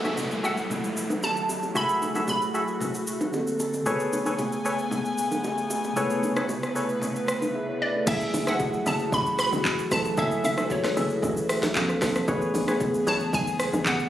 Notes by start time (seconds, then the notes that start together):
Already playing: F#3 A3 E4 A4 E5, downlifter
0.04 F#4 G#4 A4 E5, low bongo, shaker
0.17 high bongo, low conga, shaker
0.31 shaker
0.43 F#4 G#4 A4 E5 F#5, shaker
0.57 shaker
0.70 low conga, shaker
0.84 shaker
0.97 shaker
1.10 low bongo, shaker
1.23 A5, high bongo, shaker
1.37 shaker
1.49 high bongo, shaker
1.63 high bongo, shaker
1.72 F#3 A3 F#4 G#4 A4 E5, low conga, shaker
1.76 E4 F#4 G#4 B5
1.89 shaker
2.02 low bongo, shaker
2.15 F#4 G#4 A4 E5, low bongo, shaker
2.28 B5, high bongo, low conga, shaker
2.42 shaker
2.54 F#4 G#4 A4 E5, shaker
2.68 shaker
2.80 low conga, shaker
2.94 shaker
3.07 shaker
3.21 low bongo, shaker
3.32 D3 A#3 C4 A4, high bongo, shaker
3.47 shaker
3.60 high bongo, shaker
3.73 high bongo, shaker
3.82 C#3 A3 G#4 A4 B4, low conga, shaker
3.87 C#3 A3 B3 F#4 C#5 G#5
3.96 G#4, shaker
4.13 low bongo, shaker
4.26 G#4 A4 B4 C#5, low bongo, shaker
4.39 high bongo, low conga, shaker
4.52 shaker
4.65 G#4 A4 B4 C#5, shaker
4.78 shaker
4.91 low conga, shaker
5.05 shaker
5.18 shaker
5.31 low bongo, shaker
5.44 high bongo, shaker
5.58 shaker
5.70 high bongo, shaker
5.84 high bongo, shaker
5.93 C3 A3 G#4 A4 B4, low conga, shaker
5.97 C#3 B3 E4 C#5
6.10 shaker
6.23 low bongo, shaker
6.36 G#4 A4 B4 C#5, cross-stick, low bongo, shaker
6.49 high bongo, low conga, shaker
6.63 cross-stick, shaker
6.75 G#4 A4 B4 C#5, shaker
6.89 shaker
7.02 low conga, shaker
7.16 shaker
7.28 cross-stick, shaker
7.42 low bongo, shaker
7.55 G#4 E5
7.68 E4 C#5
7.81 B4 D5
7.95 C#4 A4
8.06 F#1 E3 F#3 A3 C#4 E4 F#4 G#4 A4 E5, kick, crash, low conga, shaker
8.21 shaker
8.34 F#1, open hi-hat, low bongo, shaker
8.46 F#3 A3 C#4 E4 G#4 A4 E5 F#5, cross-stick, low bongo, shaker
8.60 kick, high bongo, low conga, shaker
8.73 shaker
8.86 F#1 G#4 A4 E5 A5, open hi-hat, shaker
8.99 shaker
9.12 A1 B5, kick, low conga, shaker
9.26 shaker
9.39 B5, cross-stick, open hi-hat, shaker
9.52 F#1, low bongo, shaker
9.65 kick, clap, high bongo, shaker
9.79 shaker
9.90 A1 F#3 A3 C#4 E4 A4 A5, kick, cross-stick, open hi-hat, high bongo, shaker
10.05 high bongo, shaker
10.16 F#1 F#3 A3 C#4 E4 G#4 A4 E5, kick, low conga, shaker
10.31 shaker
10.44 F#1 E5, open hi-hat, low bongo, shaker
10.56 F#3 A3 C#4 E4 G#4 A4 B4 E5, cross-stick, low bongo, shaker
10.70 C#5, kick, high bongo, low conga, shaker
10.84 cross-stick, snare, shaker
10.95 F#1 F#3 A3 C#4 E4 G#4 A4 E5, open hi-hat, shaker
11.10 shaker
11.22 A1, kick, low conga, shaker
11.37 shaker
11.49 E5, cross-stick, open hi-hat, shaker
11.63 A1, snare, low bongo, shaker
11.74 A#1 F3 A#3 C4 D4 A4 F5, kick, clap, high bongo, shaker
11.89 cross-stick, shaker
12.01 B1 A5, kick, cross-stick, snare, open hi-hat, high bongo, shaker
12.15 cross-stick, high bongo, shaker
12.27 A1 C#3 E3 A3 B3 C#4 G#4 B4 C#5, kick, low conga, shaker
12.42 shaker
12.54 A1, open hi-hat, low bongo, shaker
12.66 E3 A3 B3 C#4 G#4 B4 C#5, cross-stick, low bongo, shaker
12.80 kick, high bongo, low conga, shaker
12.94 shaker
13.07 A1 G#4 B4 C#5 A5, open hi-hat, shaker
13.20 shaker
13.33 B1 G#5, kick, low conga, shaker
13.47 shaker
13.60 cross-stick, open hi-hat, shaker
13.73 A1, low bongo, shaker
13.86 F#5, kick, clap, high bongo, shaker
14.00 shaker